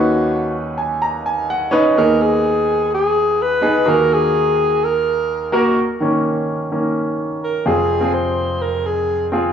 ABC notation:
X:1
M:4/4
L:1/16
Q:1/4=126
K:Bbphr
V:1 name="Alto saxophone"
^F4 z12 | B2 A6 A4 c4 | B2 A6 B6 z2 | z12 z2 B2 |
[K:Fphr] A4 c4 B2 A4 z2 |]
V:2 name="Grand piano"
[^C^D=B]4- [CDB] z a2 _b2 a2 ^f2 [CD=B^d]2 | [CEA]6- [CEA] z6 z [CEA]2 | [B,GA]6- [B,GA] z6 z [B,GB]2 | z16 |
[K:Fphr] [CFA]3 [CFA]6- [CFA] z4 [CFA]2 |]
V:3 name="Grand piano" clef=bass
[^D,,^D,]12- [D,,D,]2 z2 | [E,,E,]16 | [E,,E,]16 | z2 [E,B,D]6 [E,B,D]2 z6 |
[K:Fphr] [F,,,F,,]16 |]